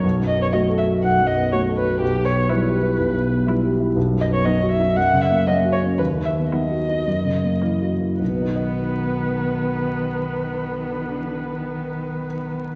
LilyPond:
<<
  \new Staff \with { instrumentName = "Violin" } { \time 4/4 \key b \major \tempo 4 = 116 r8 dis''16 cis''16 dis''8 e''8 fis''8 dis''8 cis''8 b'8 | g'8 cis''8 b'2~ b'8 r8 | r8 dis''16 cis''16 dis''8 e''8 fis''8 e''8 dis''8 cis''8 | b'8 e''8 dis''2~ dis''8 r8 |
b'1~ | b'1 | }
  \new Staff \with { instrumentName = "Grand piano" } { \time 4/4 \key b \major \tuplet 3/2 { b,,8 fis,8 b8 fis'8 a'8 fis'8 b,,8 fis,8 b8 fis'8 a'8 fis'8 } | \tuplet 3/2 { b,,8 b,8 b8 e'8 g'8 e'8 b,,8 b,8 b8 e'8 g'8 e'8 } | \tuplet 3/2 { b,,8 fis,8 b8 dis'8 fis'8 dis'8 fis,8 cis8 ais8 cis'8 fis'8 cis'8 } | \tuplet 3/2 { dis,8 dis8 b8 dis'8 fis'8 dis'8 fis,8 cis8 ais8 e'8 fis'8 e'8 } |
<b,, b, b dis' fis' dis''>1~ | <b,, b, b dis' fis' dis''>1 | }
  \new Staff \with { instrumentName = "Viola" } { \time 4/4 \key b \major r4 fis'4 r4 fis'4 | r4 e'4 r4 e'4 | r4 b4 r4 ais4 | r4 b4 r4 ais4 |
b1~ | b1 | }
  \new Staff \with { instrumentName = "Cello" } { \clef bass \time 4/4 \key b \major r4 a4 r4 a4 | r4 g4 r4 g4 | r4 fis4 r4 fis4 | r4 fis4 r4 e4 |
dis1~ | dis1 | }
>>